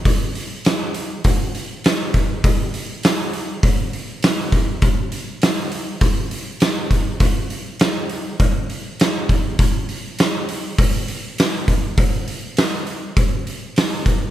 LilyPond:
\new DrumStaff \with { instrumentName = "Drums" } \drummode { \time 4/4 \tempo 4 = 101 <hho bd>8 hho8 <hho sn>8 hho8 <hho bd>8 hho8 <hho sn>8 <hho bd>8 | <hho bd>8 hho8 <hho sn>8 hho8 <hho bd>8 hho8 <hho sn>8 <hho bd>8 | <hho bd>8 hho8 <hho sn>8 hho8 <hho bd>8 hho8 <hho sn>8 <hho bd>8 | <hho bd>8 hho8 <hho sn>8 hho8 <hho bd>8 hho8 <hho sn>8 <hho bd>8 |
<hho bd>8 hho8 <hho sn>8 hho8 <hho bd>8 hho8 <hho sn>8 <hho bd>8 | <hho bd>8 hho8 <hho sn>8 hho8 <hho bd>8 hho8 <hho sn>8 <hho bd>8 | }